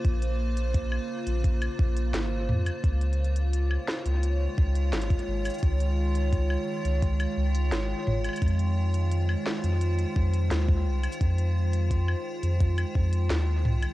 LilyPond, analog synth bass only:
\new Staff \with { instrumentName = "Analog synth bass" } { \clef bass \time 4/4 \key des \major \tempo 4 = 86 bes,,4~ bes,,16 r8 bes,,8 r16 bes,,8 aes,,8 f,16 r16 | des,4~ des,16 r8 des,8 r16 des,8 aes,,16 r16 aes,,16 r16 | des,4~ des,16 r8 des,8 r16 des,8 aes,,16 r16 aes,,16 r16 | f,4~ f,16 r8 f,8 r16 f,8 ees,8 c,16 r16 |
f,4~ f,16 r8 f,8 r16 f,8 ees,8 c,16 r16 | }